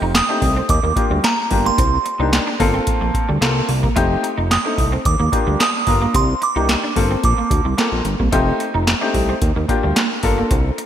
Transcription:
0.02 F1 D#4
0.15 D#6, snare, clap, closed hi-hat
0.29 A3 C4 D4 D#4 G4
0.42 C2, muted clean electric guitar stroke, kick, open hi-hat
0.56 C4
0.69 D#2 D6, kick, closed hi-hat
0.83 D#2 A#3
0.96 A#3 D4 F4 G4, muted clean electric guitar stroke, kick, closed hi-hat
1.11 D2 G3
1.24 A#3 A#5, snare, clap, closed hi-hat
1.50 G1 A#3 D4 F4 G4, muted clean electric guitar stroke, kick, open hi-hat
1.66 A#3 C6
1.78 C2 C4, kick, closed hi-hat
2.06 muted clean electric guitar stroke, closed hi-hat
2.19 C2 A#3 D4 D#4 G4
2.33 snare, clap, closed hi-hat
2.47 D4
2.60 G1 A#3 C4 F4 A4, muted clean electric guitar stroke, kick, open hi-hat
2.74 C4
2.87 kick, closed hi-hat
3.01 A#1 A#3
3.14 muted clean electric guitar stroke, kick, closed hi-hat
3.29 D2 G3
3.41 C2 A#3 C4 F4 A4, snare, clap, closed hi-hat
3.69 C2, muted clean electric guitar stroke, open hi-hat
3.83 A#3, kick
3.96 F1 A3 C4 D#4 F4 G4, kick, closed hi-hat
4.23 muted clean electric guitar stroke, closed hi-hat
4.38 F1 D#4
4.51 D#6, snare, clap, closed hi-hat
4.65 A3 C4 D4 D#4 A4
4.78 C2, muted clean electric guitar stroke, kick, open hi-hat
4.92 C4
5.05 D#2 D6, kick, closed hi-hat
5.20 D#2 A#3
5.32 A#3 D4 F4 G4, muted clean electric guitar stroke, kick, closed hi-hat
5.47 D2 G3
5.60 A#3 D#6, snare, clap, closed hi-hat
5.87 G1 A#3 D4 F4 A#4, muted clean electric guitar stroke, kick, open hi-hat
6.02 A#3
6.14 C2 C4 C6, kick, closed hi-hat
6.42 D6, muted clean electric guitar stroke, closed hi-hat
6.56 C2 A#3 D4 D#4 G4
6.69 snare, clap, closed hi-hat
6.83 D4
6.96 G1 A#3 C4 F4 A4, muted clean electric guitar stroke, kick, open hi-hat
7.11 C4
7.24 A#1 D6, kick, closed hi-hat
7.38 A#3
7.51 D2, muted clean electric guitar stroke, kick, closed hi-hat
7.65 C2 G3
7.77 A#3 C4 F4 A4, snare, clap, closed hi-hat
7.92 A#1
8.05 G1, muted clean electric guitar stroke, closed hi-hat
8.20 C2 A#3, kick
8.32 F1 A3 C4 D#4 F4 G4, kick, closed hi-hat
8.60 muted clean electric guitar stroke, closed hi-hat
8.74 F1 D#4
8.87 snare, clap, closed hi-hat
9.01 A3 C4 D4 D#4 G4
9.14 C2, muted clean electric guitar stroke, kick, open hi-hat
9.29 C4
9.42 D#2, kick, closed hi-hat
9.56 D#2 A#3
9.68 A#3 D4 F4 G4, muted clean electric guitar stroke, kick, closed hi-hat
9.83 D2 G3
9.96 A#3, snare, clap, closed hi-hat
10.23 G1 A#3 D4 F4 A4, muted clean electric guitar stroke, kick, open hi-hat
10.38 A#3
10.51 C2 C4, kick, closed hi-hat
10.78 muted clean electric guitar stroke, closed hi-hat

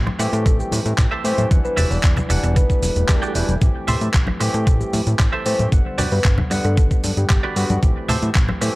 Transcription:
Already playing: E3 A3 C4 G4
0.07 muted clean electric guitar stroke, high conga
0.18 A2 E3 A3 C4 G4, muted clean electric guitar stroke, open hi-hat, shaker
0.33 A2 A4, muted clean electric guitar stroke, closed hi-hat, shaker
0.46 A1, muted clean electric guitar stroke, kick, closed hi-hat, shaker
0.59 G4, shaker
0.71 A2, open hi-hat, high conga, shaker
0.85 A2, closed hi-hat, shaker
0.98 A1, kick, clap, closed hi-hat, shaker
1.11 G4 A4 C5 E5
1.24 A2 E3 A3 C4 G4 C5, open hi-hat, shaker
1.38 A2, closed hi-hat, high conga, shaker
1.50 E2 E3 G3 D4 F#5, kick, closed hi-hat, shaker
1.64 B4, shaker
1.77 E1 F#4 G4 D5 E5, open hi-hat, low conga, shaker
1.91 E1 D5, open hi-hat, shaker
2.03 E2, kick, clap, closed hi-hat, shaker
2.17 muted clean electric guitar stroke, high conga, low conga, shaker
2.29 E1 E3 G3 D4 F#5, muted clean electric guitar stroke, open hi-hat, low conga, shaker
2.43 E1, muted clean electric guitar stroke, closed hi-hat, shaker
2.56 E2 B4, muted clean electric guitar stroke, kick, closed hi-hat, swell, shaker
2.70 kick, shaker
2.82 E1, open hi-hat, high conga, shaker
2.96 E1, closed hi-hat, shaker
3.08 E2 E3 G3 D4 G4, kick, clap, closed hi-hat, shaker
3.22 F#4 G4 D5 G5, shaker
3.35 E1 E3 G3 D4 E4, open hi-hat, shaker
3.49 E1, closed hi-hat, high conga, shaker
3.61 A1 E3 A3 C4 G4, kick, closed hi-hat, shaker
3.88 A2 G4 A4 C5 E5, open hi-hat, low conga, shaker
4.01 A2, closed hi-hat, shaker
4.14 A1, kick, clap, closed hi-hat, shaker
4.27 muted clean electric guitar stroke, high conga
4.40 A2 E3 A3 C4 G4, muted clean electric guitar stroke, open hi-hat, shaker
4.54 A2 A4, muted clean electric guitar stroke, closed hi-hat, shaker
4.67 A1, muted clean electric guitar stroke, kick, closed hi-hat, shaker
4.80 G4, shaker
4.93 A2, open hi-hat, high conga, shaker
5.07 A2, closed hi-hat, shaker
5.19 A1, kick, clap, closed hi-hat, shaker
5.33 G4 A4 C5 E5
5.45 A2 E3 A3 C4 G4 C5, open hi-hat, shaker
5.59 A2, closed hi-hat, high conga, shaker
5.71 G1 D3 G3 B3 F#5, kick, closed hi-hat, shaker
5.98 G2 F#4 G4 B4 D5, open hi-hat, low conga, shaker
6.11 G2 B4, open hi-hat, shaker
6.24 G1, kick, clap, shaker
6.38 muted clean electric guitar stroke, high conga, low conga
6.50 G2 D3 G3 B3 F#5, muted clean electric guitar stroke, open hi-hat, shaker
6.64 G2 A4, muted clean electric guitar stroke, closed hi-hat, shaker
6.77 G1, muted clean electric guitar stroke, kick, closed hi-hat, shaker
6.91 kick, shaker
7.04 G2, open hi-hat, high conga, shaker
7.17 G2 G4, closed hi-hat, shaker
7.30 G1 G4, kick, clap, closed hi-hat, shaker
7.43 F#4 G4 B4 D5
7.56 G2 D3 G3 B3 F#4, open hi-hat, shaker
7.70 G2, closed hi-hat, high conga, shaker
7.82 A1 E3 A3 G4, kick, closed hi-hat, shaker
8.09 A2 G4 A4 C5 E5, open hi-hat, low conga, shaker
8.22 A2, closed hi-hat, shaker
8.35 A1, kick, clap, closed hi-hat, shaker
8.48 muted clean electric guitar stroke, high conga
8.61 A2 E3 A3 C4 G4, muted clean electric guitar stroke, open hi-hat, shaker

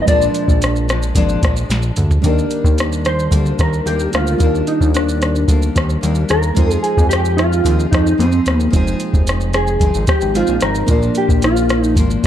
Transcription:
Already playing: G#3
0.02 G#3 D#5
0.07 A#1 A#2 F3 G#3 D4 F4 A#4 D5, kick, closed hi-hat, shaker
0.22 shaker
0.34 closed hi-hat, shaker
0.48 A#1, kick, shaker
0.62 cross-stick, closed hi-hat, shaker
0.76 shaker
0.88 G#3 D4, cross-stick, closed hi-hat, shaker
0.92 F3
1.03 shaker
1.15 G#1 A#2 F3 G#3 D4, kick, closed hi-hat, shaker
1.29 shaker
1.42 A#1 F3 G#3 D4, kick, cross-stick, closed hi-hat, shaker
1.56 shaker
1.70 A#1, snare, closed hi-hat, shaker
1.82 shaker
1.96 D2, closed hi-hat, mid tom, shaker
2.11 floor tom, shaker
2.21 D#2 D#3 G3 D4 D#4, kick, closed hi-hat, shaker
2.26 A#3 D4 A#4
2.38 shaker
2.51 closed hi-hat, shaker
2.64 D#2, kick, shaker
2.78 cross-stick, closed hi-hat, shaker
2.92 shaker
3.05 C5, cross-stick, closed hi-hat, shaker
3.19 shaker
3.31 D2 D#3 G3 A#3 D4, kick, closed hi-hat, shaker
3.46 shaker
3.59 D#2 A#4, kick, cross-stick, closed hi-hat, shaker
3.73 shaker
3.86 D#2 D#3 G3 A#3 G4, closed hi-hat, shaker
3.90 D4
3.99 shaker
4.13 D2 F4, cross-stick, closed hi-hat, shaker
4.27 shaker
4.37 D#2 D#3 G3 D4, kick, closed hi-hat, shaker
4.42 A#3 D4 F4
4.55 shaker
4.67 D#4, closed hi-hat, shaker
4.81 D#2, kick, shaker
4.94 D4, cross-stick, closed hi-hat, shaker
5.09 shaker
5.22 cross-stick, closed hi-hat, shaker
5.35 shaker
5.48 D2 D#3 G3 A#3 D4, kick, closed hi-hat, shaker
5.62 shaker
5.76 D#2, kick, cross-stick, closed hi-hat, shaker
5.90 shaker
6.01 D#2 D#3 G3 A#3, closed hi-hat, shaker
6.05 D4
6.15 shaker
6.29 D#2 A#4, cross-stick, closed hi-hat, shaker
6.43 shaker
6.54 F2 F3 G#3 C4 D#4 F4, kick, closed hi-hat, shaker
6.59 D#4 G#4 C5
6.71 shaker
6.83 G#4, closed hi-hat, shaker
6.97 F2, kick, shaker
7.09 G4, cross-stick, closed hi-hat, shaker
7.25 shaker
7.37 F4, cross-stick, closed hi-hat, shaker
7.53 shaker
7.64 D#2 F3 C4 D#4, kick, closed hi-hat, shaker
7.68 G#4
7.80 shaker
7.91 F2 D#4, kick, cross-stick, closed hi-hat, shaker
8.07 shaker
8.18 F2 F3 C4 D#4 G#4, closed hi-hat, shaker
8.32 shaker
8.46 D#2, cross-stick, closed hi-hat, shaker
8.60 shaker
8.70 F1 F3 G#3 C4 D#4 F4, kick, closed hi-hat, shaker
8.75 D#4 G#4 C5
8.88 shaker
9.00 closed hi-hat, shaker
9.13 F1, kick, shaker
9.27 cross-stick, closed hi-hat, shaker
9.40 shaker
9.53 G#4, cross-stick, closed hi-hat, shaker
9.67 shaker
9.79 G1 F3 C4 D#4 G#4, kick, closed hi-hat, shaker
9.94 G#1, shaker
10.07 G4, kick, cross-stick, closed hi-hat, shaker
10.21 G#1, shaker
10.34 F3 G#3 C4 D#4 F4 G#4 C5, closed hi-hat, shaker
10.47 A#1, shaker
10.61 G#1 A#4, cross-stick, closed hi-hat, shaker
10.75 shaker
10.86 A#1 A#2 F3 A#3 D4 F4, kick, closed hi-hat, shaker
10.91 A#3 D4 D5
11.02 shaker
11.15 G4, closed hi-hat, shaker
11.29 A#1, kick, shaker
11.42 F4, cross-stick, closed hi-hat, shaker
11.57 shaker
11.69 cross-stick, closed hi-hat, shaker
11.84 shaker
11.95 G#1 A#2 F3 A#3 D4, kick, closed hi-hat, shaker
12.10 shaker
12.24 kick, closed hi-hat, shaker

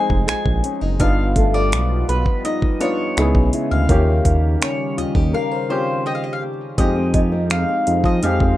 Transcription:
Already playing: F3 G#3 C4 D#4 G4 G#4 G#5
0.10 F1, kick
0.27 A#1 G#4 G#5, finger snap, closed hi-hat
0.46 A#1, kick
0.63 C#4, closed hi-hat
0.81 F#1 D#4
0.99 G1 G2 G3 B3 D4 D#4 F4 F5, kick, closed hi-hat
1.36 A3, kick, closed hi-hat
1.54 B3 D5
1.72 B1 F3, finger snap, closed hi-hat
2.08 B1 B3 B4, closed hi-hat
2.26 kick
2.44 D#4 D#5, closed hi-hat
2.62 kick
2.80 B3 D4 D#4 F4 C#5, closed hi-hat
3.16 C#2 C#3 E3 G#3 B3 D#4 E4 G#4, finger snap, closed hi-hat
3.35 B1, kick
3.53 E4, closed hi-hat
3.71 D2 F5
3.89 D#2 C#3 D#3 G3 A#3 C#4 F4 G4, kick, closed hi-hat
4.25 D#2 G4, kick, closed hi-hat
4.61 C#4 C#5, finger snap, closed hi-hat
4.97 D#2 F4 D#5, closed hi-hat
5.15 D#2 G4, kick
5.33 A#4 F5
5.51 C5
5.69 C4 C#4 F4 G4 C5
6.06 C5 D#5 G5
6.15 F5
6.24 D#5
6.33 F5
6.42 G4
6.78 F2 F3 G#3 C4 D#4 G4 D#5, kick, closed hi-hat
6.96 C4
7.14 D#4 D#5, kick, closed hi-hat
7.32 C4
7.50 D#4 F5, finger snap, closed hi-hat
7.69 C4
7.87 F2 D#4, closed hi-hat
8.04 F3 C4 D#5, kick
8.23 F2 F3 G#3 C4 D#4 G4 F5, closed hi-hat
8.40 C4, kick

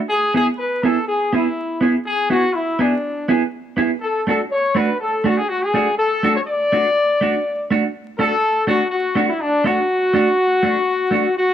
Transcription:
0.09 G#4
0.34 B3 E4 G#4
0.58 B4
0.83 B3 E4 G#4 A4
1.07 G#4
1.32 B3 E4 G#4
1.81 B3 E4 G#4
2.06 G#4
2.30 B3 E4 F#4 G#4
2.54 E4
2.79 B3 D4 E4 G#4
3.28 B3 E4 G#4
3.77 B3 E4 G#4
4.01 A4
4.27 A3 D4 F#4 A4
4.51 C#5
4.75 A3 D4 F#4 B4
5.00 A4
5.24 A3 D4 F#4
5.38 G#4
5.49 F#4
5.63 G#4
5.74 A3 D4 F#4
5.98 A4
6.23 A3 D4 F#4
6.36 C#5
6.48 D5
6.72 A3 D4 F#4
7.21 A3 D4 F#4
7.71 A3 D4 F#4
8.19 A3 D4 F#4 A4
8.67 A3 D4 F#4
8.90 F#4
9.15 A3 D4 F#4
9.28 E4
9.41 D4
9.64 A3 D4 F#4
10.13 A3 D4 F#4
10.63 A3 D4 F#4
11.11 A3 D4 F#4
11.37 F#4

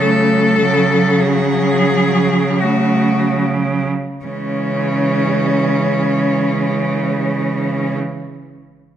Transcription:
Already playing: C#3
0.01 F#3 A3 A4
0.62 F#3
1.21 G#4
2.60 A3 F#4
4.24 C#3 E3 G#3 C#4

